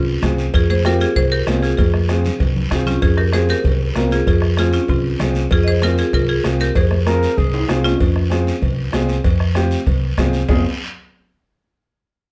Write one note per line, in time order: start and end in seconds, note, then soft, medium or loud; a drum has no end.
0.00 0.16 C2 medium
0.00 0.21 C4 medium
0.00 0.21 F4 medium
0.22 0.47 C2 medium
0.22 0.44 C4 medium
0.22 0.44 F4 medium
0.22 0.45 G#4 medium
0.22 bombo low medium
0.22 bombo rim medium
0.22 cowbell medium
0.22 high conga medium
0.22 low conga medium
0.22 short guiro medium
0.38 short guiro medium
0.54 1.03 F2 medium
0.54 0.61 F4 medium
0.54 0.62 G#4 loud
0.54 bombo low medium
0.54 cowbell loud
0.54 long guiro medium
0.70 0.84 G#4 medium
0.70 0.86 C5 loud
0.70 high conga medium
0.85 1.06 C4 medium
0.85 1.07 F4 medium
0.85 1.00 F4 medium
0.85 1.07 G4 medium
0.85 1.00 A#4 loud
0.85 bombo rim medium
0.85 cowbell medium
0.85 high conga medium
0.85 short guiro medium
1.01 1.08 F4 medium
1.01 1.08 G#4 medium
1.01 short guiro medium
1.16 1.41 C2 loud
1.16 1.31 G#4 medium
1.16 1.31 C5 loud
1.16 bombo low medium
1.16 cowbell medium
1.16 low conga medium
1.16 long guiro medium
1.32 1.61 G4 medium
1.32 1.64 A#4 medium
1.47 1.72 C2 loud
1.47 1.69 C4 medium
1.47 1.69 F4 medium
1.47 1.69 G#4 medium
1.47 bombo rim medium
1.47 cowbell medium
1.47 high conga medium
1.47 low timbale medium
1.47 short guiro medium
1.63 1.70 F4 medium
1.63 1.70 G#4 medium
1.63 short guiro medium
1.78 2.28 F2 loud
1.78 2.37 F4 medium
1.78 2.36 G#4 medium
1.78 bombo low medium
1.78 cowbell loud
1.78 high conga loud
1.78 long guiro medium
1.94 bombo rim medium
2.09 2.31 C4 medium
2.09 2.31 F4 medium
2.09 2.31 G#4 medium
2.09 bombo rim medium
2.09 cowbell medium
2.09 high conga medium
2.09 short guiro medium
2.25 low conga medium
2.25 short guiro medium
2.40 2.65 C2 loud
2.40 bombo low medium
2.40 cowbell medium
2.40 low conga medium
2.40 long guiro medium
2.56 low conga medium
2.71 2.96 C2 medium
2.71 2.93 C4 medium
2.71 2.93 F4 medium
2.71 2.93 G#4 medium
2.71 bombo low medium
2.71 bombo rim medium
2.71 cowbell medium
2.71 low conga loud
2.71 short guiro medium
2.86 3.01 C#4 medium
2.86 3.01 F4 medium
2.86 low conga medium
2.86 short guiro medium
3.02 3.52 F2 medium
3.02 3.10 F4 medium
3.02 3.09 G#4 medium
3.02 bombo low medium
3.02 cowbell loud
3.02 long guiro medium
3.17 3.32 G4 medium
3.17 3.34 A#4 loud
3.17 bombo rim medium
3.33 3.55 C4 medium
3.33 3.55 F4 medium
3.33 3.48 G#4 medium
3.33 3.55 G#4 medium
3.33 3.48 C5 loud
3.33 bombo rim medium
3.33 cowbell medium
3.33 high conga medium
3.33 short guiro medium
3.49 4.08 G4 medium
3.49 4.14 A#4 loud
3.49 short guiro medium
3.64 3.90 C2 medium
3.64 bombo low medium
3.64 cowbell medium
3.64 low conga medium
3.64 long guiro medium
3.95 4.21 C2 loud
3.95 4.17 C4 medium
3.95 4.18 F4 medium
3.95 4.18 A#4 medium
3.95 bombo rim medium
3.95 cowbell medium
3.95 high conga medium
3.95 low timbale medium
3.95 short guiro medium
4.11 4.19 F4 medium
4.11 4.19 G#4 medium
4.11 short guiro medium
4.27 4.76 F2 loud
4.27 4.56 F4 medium
4.27 4.58 G#4 medium
4.27 bombo low medium
4.27 cowbell loud
4.27 long guiro medium
4.42 bombo rim medium
4.57 4.80 C4 medium
4.57 4.80 F4 medium
4.57 4.72 F4 medium
4.57 4.73 G#4 medium
4.57 4.80 G#4 medium
4.57 bombo rim medium
4.57 cowbell medium
4.57 high conga medium
4.57 short guiro medium
4.73 4.80 C#4 medium
4.73 4.81 F4 medium
4.73 short guiro medium
4.88 5.14 C2 loud
4.88 5.18 C4 medium
4.88 5.18 F4 medium
4.88 bombo low medium
4.88 cowbell medium
4.88 low conga medium
4.88 long guiro medium
5.19 5.45 C2 loud
5.19 5.42 C4 medium
5.19 5.42 F4 medium
5.19 5.43 G#4 medium
5.19 bombo rim medium
5.19 cowbell medium
5.19 high conga medium
5.19 low conga medium
5.19 low timbale medium
5.19 short guiro medium
5.35 short guiro medium
5.51 6.01 F2 medium
5.51 5.57 F4 medium
5.51 5.57 G#4 medium
5.51 bombo low medium
5.51 cowbell loud
5.51 long guiro medium
5.63 5.67 D#5 medium
5.68 5.82 G#4 medium
5.68 5.82 C5 loud
5.82 6.04 C4 medium
5.82 6.04 F4 medium
5.82 5.97 F4 medium
5.82 6.05 G#4 medium
5.82 5.97 A#4 loud
5.82 bombo rim medium
5.82 cowbell medium
5.82 high conga medium
5.82 short guiro medium
5.98 6.13 F4 medium
5.98 6.14 G#4 loud
5.98 short guiro medium
6.13 6.38 C2 loud
6.13 6.21 F4 medium
6.13 6.21 A#4 loud
6.13 bombo low medium
6.13 cowbell medium
6.13 low conga medium
6.13 long guiro medium
6.29 6.58 F4 medium
6.29 6.58 G#4 loud
6.44 6.69 C2 loud
6.44 6.66 C4 medium
6.44 6.66 F4 medium
6.44 6.66 G#4 medium
6.44 bombo rim medium
6.44 cowbell medium
6.44 high conga medium
6.44 short guiro medium
6.60 6.75 G4 medium
6.60 6.76 A#4 medium
6.60 short guiro medium
6.75 7.25 F2 medium
6.75 7.34 G#4 medium
6.75 7.34 C5 medium
6.75 bombo low medium
6.75 cowbell loud
6.75 long guiro medium
6.91 bombo rim medium
6.91 high conga medium
7.05 7.28 C4 medium
7.05 7.29 F4 medium
7.05 7.29 G#4 medium
7.05 7.39 A#4 loud
7.05 bombo rim medium
7.05 cowbell medium
7.05 high conga medium
7.05 short guiro medium
7.23 short guiro medium
7.37 7.63 C2 loud
7.37 7.76 G#4 medium
7.37 bombo low medium
7.37 cowbell medium
7.37 low conga medium
7.37 long guiro medium
7.54 high timbale medium
7.68 7.94 C2 loud
7.68 7.90 C4 medium
7.68 7.91 F4 medium
7.68 7.91 G#4 loud
7.68 bombo rim medium
7.68 cowbell medium
7.68 high conga medium
7.68 short guiro medium
7.84 7.99 C#4 medium
7.84 7.99 F4 loud
7.84 low timbale medium
7.84 short guiro medium
8.00 8.50 F2 medium
8.00 bombo low medium
8.00 cowbell loud
8.00 long guiro medium
8.16 bombo rim medium
8.30 8.52 C4 medium
8.30 8.53 F4 medium
8.30 8.53 G#4 medium
8.30 bombo rim medium
8.30 cowbell medium
8.30 high conga medium
8.30 short guiro medium
8.47 short guiro medium
8.62 8.87 C2 medium
8.62 bombo low medium
8.62 cowbell medium
8.62 low conga medium
8.62 long guiro medium
8.92 9.18 C2 medium
8.92 9.15 C4 medium
8.92 9.15 F4 medium
8.92 9.15 G#4 loud
8.92 bombo rim medium
8.92 cowbell medium
8.92 high conga medium
8.92 low timbale medium
8.92 short guiro medium
9.09 short guiro medium
9.24 9.74 F2 medium
9.24 bombo low medium
9.24 cowbell loud
9.24 long guiro medium
9.40 bombo rim medium
9.55 9.77 C4 medium
9.55 9.77 F4 medium
9.55 9.78 G4 medium
9.55 bombo rim medium
9.55 cowbell medium
9.55 high conga medium
9.55 short guiro medium
9.71 short guiro medium
9.86 10.12 C2 medium
9.86 bombo low medium
9.86 cowbell medium
9.86 low conga medium
9.86 long guiro medium
10.18 10.43 C2 medium
10.18 10.40 C4 medium
10.18 10.40 F4 medium
10.18 10.40 G#4 medium
10.18 bombo low medium
10.18 bombo rim medium
10.18 cowbell medium
10.18 high conga medium
10.18 low conga medium
10.18 low timbale medium
10.18 short guiro medium
10.33 short guiro medium
10.49 10.63 F1 loud
10.49 10.64 C4 medium
10.49 10.64 F4 medium
10.49 10.63 G#4 medium
10.49 10.64 G#4 medium
10.49 bombo low loud
10.49 low conga medium
10.49 low timbale loud
10.49 long guiro loud